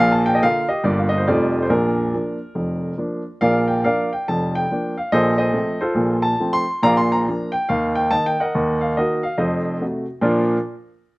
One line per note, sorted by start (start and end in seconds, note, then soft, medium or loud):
0.00 0.34 A#1 medium
0.00 0.34 A#2 medium
0.00 0.12 F5 loud
0.12 0.25 A5 medium
0.26 0.33 G5 medium
0.35 0.42 D#5 medium
0.42 0.65 D3 soft
0.42 0.66 A#3 soft
0.42 0.66 F4 soft
0.42 0.68 A#4 medium
0.42 0.69 F5 loud
0.69 0.83 G4 medium
0.69 0.84 D#5 medium
0.84 1.20 G1 medium
0.84 1.20 G2 medium
0.84 1.08 G3 soft
0.84 1.08 A#3 soft
0.84 1.08 F4 soft
0.84 0.98 D5 medium
0.98 1.11 F5 medium
1.09 1.18 D#5 medium
1.18 1.26 C5 medium
1.27 1.64 F1 medium
1.27 1.63 F2 medium
1.27 1.51 G3 soft
1.27 1.51 A3 soft
1.27 1.52 D#4 soft
1.27 1.60 F4 medium
1.27 1.62 D5 medium
1.62 1.70 C5 medium
1.70 2.06 A#1 medium
1.70 2.06 A#2 medium
1.70 2.14 D4 medium
1.70 2.98 A#4 medium
2.14 2.37 F3 soft
2.14 2.38 A#3 soft
2.14 2.38 D4 soft
2.55 2.91 F1 soft
2.55 2.91 F2 soft
2.98 3.21 F3 soft
2.98 3.21 A#3 soft
2.98 3.22 D4 soft
3.41 3.77 A#1 medium
3.41 3.78 A#2 medium
3.41 3.66 A#4 medium
3.41 3.67 D5 medium
3.41 3.68 F5 medium
3.68 3.83 G5 medium
3.84 4.08 F3 soft
3.84 4.08 A#3 soft
3.84 4.08 D4 soft
3.84 4.09 A#4 medium
3.84 4.10 D5 medium
3.84 4.11 F5 medium
4.13 4.27 G5 medium
4.28 4.64 F1 medium
4.28 4.64 F2 medium
4.28 4.54 A5 medium
4.55 4.97 G5 medium
4.71 4.94 F3 soft
4.71 4.95 A#3 soft
4.71 4.95 D4 soft
4.97 5.12 F5 medium
5.12 5.48 A#1 medium
5.12 5.49 A#2 medium
5.12 5.38 A4 medium
5.12 5.38 C5 medium
5.12 5.37 D#5 medium
5.38 5.79 A4 medium
5.38 5.79 C5 medium
5.38 5.81 D#5 medium
5.53 5.77 F3 soft
5.53 5.77 A3 soft
5.53 5.77 C4 soft
5.81 6.21 F4 medium
5.81 6.21 A4 medium
5.81 6.24 C5 medium
5.95 6.32 A#1 medium
5.95 6.33 A#2 medium
6.22 6.53 A5 medium
6.40 6.63 F3 soft
6.40 6.64 A3 soft
6.40 6.64 C4 medium
6.53 6.82 C6 loud
6.83 7.19 A#1 medium
6.83 7.19 A#2 medium
6.83 6.96 D5 medium
6.83 6.97 F5 medium
6.83 6.97 A#5 loud
6.97 7.11 C6 medium
7.12 7.53 A#5 medium
7.28 7.51 F3 soft
7.28 7.52 A#3 soft
7.28 7.51 D4 soft
7.52 7.68 G5 medium
7.69 8.05 D#2 medium
7.69 8.05 D#3 medium
7.69 7.96 F5 medium
7.95 8.11 G5 medium
8.11 8.34 D#3 soft
8.11 8.35 A#3 soft
8.11 8.35 D#4 soft
8.11 8.25 A5 loud
8.26 8.40 G5 medium
8.40 8.79 A#4 medium
8.40 8.79 D#5 medium
8.40 8.81 F#5 medium
8.55 8.91 D#2 medium
8.55 8.91 D#3 medium
8.81 8.96 F5 medium
8.97 9.21 D#3 soft
8.97 9.21 A#3 soft
8.97 9.21 D#4 soft
8.97 9.23 F#4 medium
8.97 9.23 A#4 medium
8.97 9.24 D#5 medium
9.23 9.39 F5 medium
9.38 9.75 F1 soft
9.38 9.75 F2 medium
9.38 9.64 A4 medium
9.38 9.64 C5 medium
9.38 9.65 D#5 medium
9.81 10.05 C3 soft
9.81 10.05 A3 soft
9.81 10.05 F#4 soft
10.21 10.51 A#2 medium
10.21 10.51 F3 medium
10.21 10.51 D4 medium
10.21 10.51 F4 medium
10.21 10.51 A#4 medium
10.21 10.52 D5 medium